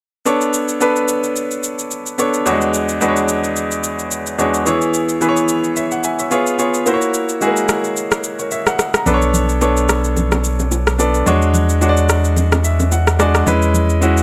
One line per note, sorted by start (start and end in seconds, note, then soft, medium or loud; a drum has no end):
0.25 0.71 B3 medium
0.25 0.71 D4 medium
0.25 0.71 A4 medium
0.25 0.72 C#5 medium
0.25 shaker medium
0.41 shaker soft
0.54 shaker medium
0.69 shaker medium
0.81 1.69 B3 medium
0.81 1.70 D4 medium
0.81 1.70 A4 medium
0.81 1.70 B4 medium
0.81 shaker medium
0.96 shaker medium
1.08 shaker medium
1.24 shaker soft
1.36 shaker medium
1.51 shaker medium
1.63 shaker medium
1.79 shaker medium
1.91 shaker medium
2.06 shaker medium
2.18 2.41 B3 medium
2.18 2.41 D4 medium
2.18 2.41 A4 medium
2.18 2.42 C#5 medium
2.18 shaker medium
2.34 shaker soft
2.46 2.91 E2 medium
2.46 2.53 G3 medium
2.46 2.91 D4 medium
2.46 2.91 F#4 medium
2.46 2.92 C#5 medium
2.46 shaker medium
2.52 2.94 G#3 medium
2.61 shaker soft
2.74 shaker medium
2.89 shaker medium
3.01 3.90 E2 medium
3.01 3.90 G#3 medium
3.01 3.90 D4 medium
3.01 3.90 F#4 medium
3.01 3.09 B4 medium
3.01 shaker medium
3.08 3.93 C#5 medium
3.16 shaker soft
3.29 shaker medium
3.44 shaker soft
3.56 shaker medium
3.71 shaker medium
3.84 shaker medium
3.99 shaker medium
4.11 shaker medium
4.27 shaker medium
4.38 4.61 E2 medium
4.38 4.61 G#3 medium
4.38 4.61 D4 medium
4.38 4.62 F#4 medium
4.38 4.62 C#5 medium
4.38 shaker medium
4.54 shaker medium
4.66 5.11 E3 medium
4.66 5.11 B3 medium
4.66 5.11 E4 medium
4.66 5.12 G#4 medium
4.66 5.12 C#5 medium
4.66 shaker medium
4.82 shaker soft
4.94 shaker medium
5.09 shaker medium
5.21 6.10 E3 medium
5.21 6.10 B3 medium
5.21 6.10 E4 medium
5.21 6.10 G#4 medium
5.21 5.29 B4 medium
5.21 shaker medium
5.29 5.76 C#5 medium
5.37 shaker medium
5.49 shaker loud
5.64 shaker soft
5.76 5.91 C#5 medium
5.76 5.91 E5 medium
5.76 shaker medium
5.91 6.03 F#5 medium
5.91 shaker medium
6.04 6.18 E5 medium
6.04 6.18 G#5 medium
6.04 shaker medium
6.19 6.30 C#5 medium
6.19 6.45 E5 medium
6.19 shaker medium
6.31 6.54 B3 medium
6.31 6.54 F4 medium
6.31 6.54 G#4 medium
6.31 6.54 C#5 medium
6.31 shaker medium
6.47 shaker medium
6.58 6.81 B3 medium
6.58 6.81 F4 medium
6.58 6.82 G#4 medium
6.58 6.82 C#5 medium
6.58 shaker medium
6.74 shaker soft
6.86 7.31 A#3 medium
6.86 7.32 E4 medium
6.86 7.32 F#4 medium
6.86 6.94 C5 medium
6.86 shaker medium
6.94 7.35 C#5 medium
7.02 shaker soft
7.14 shaker medium
7.29 shaker medium
7.41 7.48 G#3 medium
7.41 8.30 E4 medium
7.41 8.30 F#4 medium
7.41 8.31 G#4 medium
7.41 shaker medium
7.47 8.33 A#3 medium
7.57 shaker medium
7.69 cross-stick medium
7.69 shaker loud
7.84 shaker soft
7.97 shaker medium
8.12 cross-stick medium
8.12 shaker medium
8.24 shaker medium
8.39 8.51 A#4 medium
8.39 8.51 C#5 medium
8.39 shaker medium
8.51 8.66 C#5 medium
8.51 8.66 E5 medium
8.51 shaker medium
8.67 8.93 F#5 medium
8.67 cross-stick medium
8.67 shaker medium
8.79 cross-stick medium
8.79 shaker medium
8.94 9.21 F#5 medium
8.94 9.20 A#5 medium
8.94 cross-stick medium
8.94 shaker medium
9.06 11.23 B1 medium
9.06 9.51 B3 medium
9.06 9.52 D4 medium
9.06 9.52 A4 medium
9.06 9.14 B4 medium
9.06 low conga medium
9.06 shaker medium
9.14 9.55 C#5 medium
9.22 shaker soft
9.34 low conga medium
9.34 shaker medium
9.49 shaker medium
9.61 10.50 B3 medium
9.61 10.50 D4 medium
9.61 10.50 A4 medium
9.61 10.51 C#5 medium
9.61 high bongo medium
9.61 shaker medium
9.77 shaker medium
9.89 cross-stick medium
9.89 shaker loud
10.04 shaker soft
10.17 low bongo soft
10.17 low conga medium
10.17 shaker medium
10.32 cross-stick medium
10.32 high bongo medium
10.32 low bongo medium
10.32 shaker medium
10.44 shaker medium
10.60 low bongo medium
10.60 shaker medium
10.72 high bongo medium
10.72 shaker medium
10.87 cross-stick medium
10.87 shaker medium
10.99 11.22 B3 medium
10.99 11.22 D4 medium
10.99 11.22 A4 medium
10.99 11.22 D5 medium
10.99 high bongo medium
10.99 shaker medium
11.14 shaker medium
11.26 13.43 E2 medium
11.26 11.72 G#3 medium
11.26 11.72 D4 medium
11.26 11.72 F#4 medium
11.26 11.72 C#5 medium
11.26 low conga medium
11.26 shaker medium
11.42 shaker soft
11.54 low conga medium
11.54 shaker medium
11.69 shaker medium
11.81 12.70 G#3 medium
11.81 12.70 D4 medium
11.81 12.71 F#4 medium
11.81 11.89 C#5 medium
11.81 high bongo medium
11.81 shaker medium
11.89 12.74 D5 medium
11.97 shaker medium
12.09 cross-stick medium
12.09 shaker loud
12.24 shaker soft
12.36 low bongo medium
12.36 low conga medium
12.36 shaker medium
12.52 cross-stick medium
12.52 high bongo medium
12.52 low bongo medium
12.52 shaker medium
12.64 12.90 E5 medium
12.64 shaker medium
12.80 low bongo medium
12.80 shaker medium
12.92 13.18 F#5 medium
12.92 high bongo medium
12.92 shaker medium
13.07 cross-stick medium
13.07 shaker medium
13.19 13.42 G#3 medium
13.19 13.42 D4 medium
13.19 13.42 F#4 medium
13.19 13.43 D5 medium
13.19 13.45 G#5 medium
13.19 cross-stick medium
13.19 high bongo soft
13.19 shaker medium
13.35 cross-stick medium
13.35 shaker medium
13.46 14.23 E2 medium
13.46 13.92 G#3 medium
13.46 13.92 C#4 medium
13.46 13.92 E4 medium
13.46 13.93 B4 loud
13.46 low conga medium
13.46 shaker medium
13.62 shaker soft
13.74 low conga medium
13.74 shaker medium
13.90 shaker medium
14.01 14.23 G#3 medium
14.01 14.23 C#4 medium
14.01 14.23 E4 medium
14.01 14.23 F#4 medium
14.01 high bongo medium
14.01 shaker medium
14.17 shaker medium